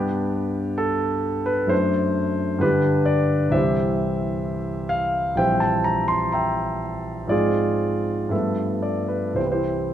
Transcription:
Already playing: G2 G3 B3 D4 G4
0.78 A4
1.46 B4
1.67 F#2 A3 D4 C5
2.58 G2 D3 G3 D4 B4
2.63 G4
3.06 D5
3.49 C2 E3 G3 E5
3.53 C4 G4 C5
4.89 F5
5.35 A#1 E3 G3 C4 C5 E5 G5
5.60 A5
5.84 A#5
6.08 C6
6.32 E5 G5 A#5
7.27 G#2 F3 G#3 C4 F4 G#4 D5
8.29 G2 F3 A3 B3 A4 B4 E5
8.82 D5
9.08 B4
9.34 C2 E3 G3 C4 C5
9.46 B4
9.52 E4 G4 C5

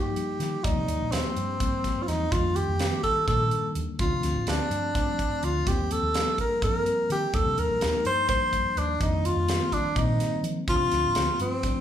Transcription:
Already playing: G2 F3 G3 A#3 D#4 G4
0.16 closed hi-hat
0.40 D#3, snare, closed hi-hat
0.63 D#2 F3 G3 A#3 D#4 D5, kick, closed hi-hat
0.76 C3
0.88 D#2, closed hi-hat
1.01 A#1
1.11 D#2 F3 G3 C4 D4, snare, closed hi-hat
1.36 G2, closed hi-hat
1.60 F3 G3 A#3 C4, kick, closed hi-hat
1.84 kick, snare, closed hi-hat
1.97 muted fingered electric bass stroke
2.03 F4
2.07 E2 D#4, snare, closed hi-hat
2.32 F2 D#3 G3 A#3 D4 F4, kick, closed hi-hat
2.56 G4, closed hi-hat
2.69 F2
2.79 D#3 G3 A#3 D4, snare, closed hi-hat
3.03 A4, kick, closed hi-hat
3.27 A#2 D#3 G3 A#3 D4 A4, kick, closed hi-hat
3.51 closed hi-hat
3.75 D#2, closed hi-hat
3.99 D2 F3 A3 C4 D4 F4, kick, closed hi-hat
4.11 C3
4.22 D2, snare, closed hi-hat
4.34 A1
4.47 D2 F3 A3 C4 D4, snare, closed hi-hat
4.70 G2, closed hi-hat
4.95 F3 A3 C4 D4, kick, snare, closed hi-hat
5.19 kick, closed hi-hat
5.30 muted fingered electric bass stroke
5.42 D2 F4, closed hi-hat
5.66 D#2 F3 G3 A#3 C4 G4, kick, closed hi-hat
5.91 A4, closed hi-hat
6.02 D#2
6.14 F3 G3 A#3, snare, closed hi-hat
6.38 A#4, kick, closed hi-hat
6.62 G2 F3 G3 A#3 C4 A#4, kick, closed hi-hat
6.86 closed hi-hat
7.10 D#3 G4, closed hi-hat
7.33 D#2 F3 G3 A#3 D4 A4, kick, closed hi-hat
7.46 C3
7.58 D#2 A#4, closed hi-hat
7.70 A#1
7.80 D#2 F3 G3 D#4, snare, closed hi-hat
8.05 G2 C5, closed hi-hat
8.28 F3 G3 A#3 D4 C5, kick, closed hi-hat
8.53 kick, closed hi-hat
8.65 muted fingered electric bass stroke
8.76 D#2 D4, closed hi-hat
8.99 F2 D#3 G3 A#3 D4 D#4, kick, closed hi-hat
9.25 F4, closed hi-hat
9.36 F2
9.48 D#3 G3 A#3 C4, snare, closed hi-hat
9.72 D4, kick, closed hi-hat
9.96 A#2 D#3 G3 A#3 C4 D#4, kick, closed hi-hat
10.20 snare, closed hi-hat
10.43 F3, closed hi-hat
10.68 D2 F3 A3 C4 D4 F4, kick, closed hi-hat
10.79 C3
10.91 D2, snare, closed hi-hat
11.04 A1
11.15 D2 F3 A3 C4 F4, snare, closed hi-hat
11.39 G2 C4, closed hi-hat
11.63 F3 A3 C4 D4, kick, closed hi-hat

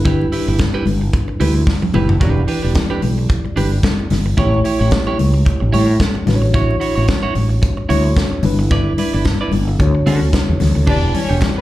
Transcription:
Already playing: G1 G3 D4 E4 B4
0.05 E4 G4 B4, kick, closed hi-hat, muted conga, low conga
0.21 muted conga
0.32 E4 G4 B4, open hi-hat
0.48 G1 E4 G4 B4
0.58 muted clean electric guitar stroke, kick, snare, closed hi-hat, muted conga, high conga
0.74 E4 G4 B4
0.86 G1, muted clean electric guitar stroke, open hi-hat, high conga
1.01 muted clean electric guitar stroke
1.13 muted clean electric guitar stroke, kick, closed hi-hat, muted conga
1.28 muted clean electric guitar stroke, muted conga
1.40 D2 E4 G4 B4, open hi-hat, high conga
1.55 muted clean electric guitar stroke
1.67 kick, snare, muted conga, high conga
1.82 muted clean electric guitar stroke, high tom, muted conga
1.94 F#1 E4 G4 B4, mid tom, high conga, low conga
2.09 muted clean electric guitar stroke, floor tom
2.20 E1 E3 D4 E4 G4 B4 D5, kick, closed hi-hat, muted conga, low conga
2.37 muted conga
2.48 D4 G4 B4, open hi-hat
2.63 E1 D4 G4 B4
2.74 kick, snare, closed hi-hat, high conga
2.90 D4 G4 B4, muted conga
3.02 B1, muted clean electric guitar stroke, open hi-hat, high conga
3.18 muted clean electric guitar stroke
3.29 muted clean electric guitar stroke, kick, closed hi-hat, muted conga
3.45 muted clean electric guitar stroke, muted conga
3.56 G1 D4 G4 B4, open hi-hat, high conga
3.72 muted clean electric guitar stroke
3.83 muted clean electric guitar stroke, kick, snare, closed hi-hat, high conga
3.99 muted clean electric guitar stroke, muted conga
4.10 G1, snare, open hi-hat, high conga, low conga
4.26 muted clean electric guitar stroke
4.37 A1 A3 E4 G4 C#5, kick, closed hi-hat, low conga
4.54 muted conga
4.64 E4 G4 C#5, open hi-hat
4.79 A1 E4 G4 C#5
4.91 muted clean electric guitar stroke, kick, snare, closed hi-hat, high conga
5.07 E4 G4 C#5, muted conga
5.19 C#2, muted clean electric guitar stroke, open hi-hat, high conga
5.34 muted clean electric guitar stroke
5.45 muted clean electric guitar stroke, kick, closed hi-hat, muted conga
5.60 A1, muted clean electric guitar stroke
5.72 A2 E4 G4 C#5, open hi-hat, high conga
5.88 muted clean electric guitar stroke
6.00 muted clean electric guitar stroke, kick, snare, closed hi-hat, high conga
6.15 muted clean electric guitar stroke, muted conga
6.26 A1 D4 F#4 B4, snare, open hi-hat, high conga, low conga
6.36 C#5
6.42 muted clean electric guitar stroke
6.54 E4 F#4 C#5, kick, closed hi-hat, muted conga, low conga
6.71 muted conga
6.80 E4 F#4 C#5, open hi-hat
6.95 A1 E4 F#4 C#5
7.08 muted clean electric guitar stroke, kick, snare, closed hi-hat, muted conga, high conga
7.23 E4 F#4 C#5, muted conga
7.35 A1, muted clean electric guitar stroke, open hi-hat, high conga
7.49 muted clean electric guitar stroke
7.62 muted clean electric guitar stroke, kick, closed hi-hat, muted conga
7.77 muted clean electric guitar stroke, muted conga
7.89 D2 D4 E4 F#4 C#5, open hi-hat, high conga
8.05 muted clean electric guitar stroke
8.16 muted clean electric guitar stroke, kick, snare, muted conga, high conga
8.32 muted clean electric guitar stroke
8.42 G1 G3 D4 E4 B4, open hi-hat, high conga, low conga
8.59 muted clean electric guitar stroke
8.71 E4 B4 D5, kick, closed hi-hat, muted conga, low conga
8.98 E4 B4 D5, open hi-hat, high conga
9.13 G1 E4 B4 D5
9.24 kick, snare, closed hi-hat, high conga
9.41 E4 B4 D5
9.52 G1, muted clean electric guitar stroke, open hi-hat, high conga
9.68 muted clean electric guitar stroke
9.78 D2 D3 D4 F#4 C#5, muted clean electric guitar stroke, kick, closed hi-hat, muted conga
9.95 muted clean electric guitar stroke
10.06 D3 C#4 F#4 A4, open hi-hat, high conga
10.21 D2, muted clean electric guitar stroke
10.33 muted clean electric guitar stroke, kick, snare, closed hi-hat, muted conga, high conga
10.48 E2, muted clean electric guitar stroke
10.60 D2, snare, open hi-hat, high conga, low conga
10.75 D2, muted clean electric guitar stroke
10.86 E1 E3 D4 E4 G4 B4 D5, kick, crash, muted conga, low conga
11.03 muted conga
11.14 C#4 C#5, muted clean electric guitar stroke, open hi-hat, high conga
11.29 E1 D4 G4 C#5
11.41 kick, snare, clap, closed hi-hat, muted conga, high conga
11.56 B3 B4, muted clean electric guitar stroke

